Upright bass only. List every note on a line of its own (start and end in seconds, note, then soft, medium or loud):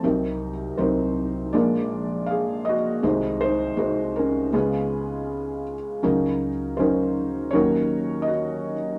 0.04 0.66 C2 medium
0.78 1.55 C2 medium
1.55 2.79 A#1 medium
3.03 3.66 C2 medium
3.77 4.53 C2 medium
4.53 5.78 C#2 medium
6.04 6.77 C#2 medium
6.77 7.52 D2 medium
7.52 8.77 D#2 medium